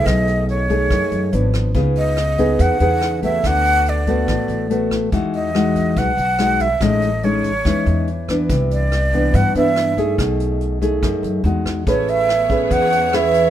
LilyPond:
<<
  \new Staff \with { instrumentName = "Flute" } { \time 4/4 \key e \major \tempo 4 = 142 dis''4 cis''2~ cis''8 r8 | r8 dis''4. fis''4. e''8 | fis''4 d''2~ d''8 r8 | r8 dis''4. fis''4. e''8 |
dis''4 cis''2~ cis''8 r8 | r8 d''4. fis''8 e''4. | r1 | \key a \major cis''8 e''4. fis''4 e''4 | }
  \new Staff \with { instrumentName = "String section" } { \time 4/4 \key e \major r1 | r1 | r1 | r1 |
r1 | r1 | r1 | \key a \major <b gis' cis''>1 | }
  \new Staff \with { instrumentName = "Nylon-string guitar" } { \time 4/4 \key e \major << { <a dis' gis'>4. <a dis' gis'>4. <eis b d'>4 | <b dis' gis'>4 r8 <b dis' gis'>4 <b dis' gis'>4 <a b fis'>8~ | <a b fis'>4. <a b fis'>4. <a b fis'>4 | <gis dis' fis'>4 <gis dis' fis'>4. r8 <gis dis' fis'>8 r8 |
<gis cis' dis'>8 r8 <gis cis' dis'>8 r8 <gis cis' dis'>4 r8 <e b d'>8~ | <e b d'>4 r8 <e b d'>4 <e b d'>4 <a dis' gis'>8~ | <a dis' gis'>4. <a dis' gis'>4. <gis dis' fis'>4 | \key a \major <cis' gis' b'>4 r8 <cis' gis' b'>4. <cis' gis' b'>4 | } \\ { b,2 fis,4 r4 | cis2 cis2 | d2 a,2 | e2 b,2 |
a,2 e2 | c2 g,2 | b,2 fis,4 r4 | a2 e2 | } >> }
  \new Staff \with { instrumentName = "Upright bass" } { \clef bass \time 4/4 \key e \major b,,2 fis,16 r16 fis,8 gis,,4 | cis,2 e,16 r16 e,4. | d,2 a,,16 r16 a,,4. | e,2 b,,16 r16 b,,4. |
a,,2 e,16 r16 e,4. | c,2 g,16 r16 g,4. | b,,2 fis,16 r16 fis,8 e,4 | \key a \major a,,2 e,2 | }
  \new DrumStaff \with { instrumentName = "Drums" } \drummode { \time 4/4 <hh bd ss>8 hh8 hh8 <hh bd>8 <hh bd ss>8 hh8 hh8 <hh bd ss>8 | <hh bd>8 hh8 <hh ss>8 <hh bd>8 <hh bd>8 hh8 <hh ss>8 <hh bd>8 | <hh bd ss>8 hh8 hh8 <hh bd>8 <hh bd ss>8 hh8 hh8 <hh bd ss>8 | <hh bd>8 hh8 <hh ss>8 <hh bd>8 <hh bd>8 hh8 <hh ss>8 <hh bd>8 |
<hh bd ss>8 hh8 hh8 <hh bd>8 <hh bd ss>8 hh8 hh8 <hh bd ss>8 | <hh bd>8 hh8 <hh ss>8 <hh bd>8 <hh bd>8 hh8 <hh ss>8 <hh bd>8 | <hh bd ss>8 hh8 hh8 <hh bd>8 <hh bd ss>8 hh8 hh8 <hh bd ss>8 | <hh bd>8 hh8 <hh ss>8 <hh bd>8 <hh bd>8 hh8 <hh ss>8 hh8 | }
>>